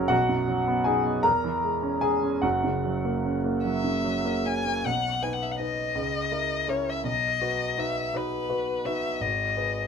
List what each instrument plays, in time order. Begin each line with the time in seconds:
Already playing: grand piano C#3 F#3 C#4 F#4 A#4 C#5 A#5 C#6
0.08 grand piano B1 F#4 F#5
0.29 grand piano F#2
0.48 grand piano F#3
0.67 grand piano B3
0.84 grand piano D#4 G#4 G#5
1.05 grand piano B3
1.23 grand piano E2 A#4 A#5
1.44 grand piano E3
1.64 grand piano G#3
1.83 grand piano C#4
2.01 grand piano G#3 G#4 G#5
2.23 grand piano C#4
2.42 grand piano F#1 F#2 F#4 F#5
2.64 grand piano C#3
2.85 grand piano F#3
3.04 grand piano A#3
3.25 grand piano C#4
3.44 grand piano A#3
3.64 grand piano F#3, violin E5
3.84 grand piano C#3
4.04 grand piano F#3
4.25 grand piano A#3
4.45 grand piano C#4, violin G#5
4.66 grand piano A#3
4.85 grand piano B1, violin F#5
5.22 grand piano D#4 B4, violin G#5
5.33 violin F#5
5.43 violin E5
5.52 violin F#5
5.59 grand piano D#4 B4, violin D#5
5.95 grand piano C#2
6.32 grand piano E4 A#4
6.68 grand piano C#4 E4 A#4, violin C#5
6.90 violin E5
7.04 grand piano B1, violin D#5
7.41 grand piano F#4 B4
7.78 grand piano D#4 F#4 B4, violin E5
8.13 grand piano D#4 F#4 B4, violin B4
8.49 grand piano F#4 B4
8.85 grand piano D#4 F#4 B4, violin E5
9.21 grand piano G#1, violin D#5
9.57 grand piano G#4 B4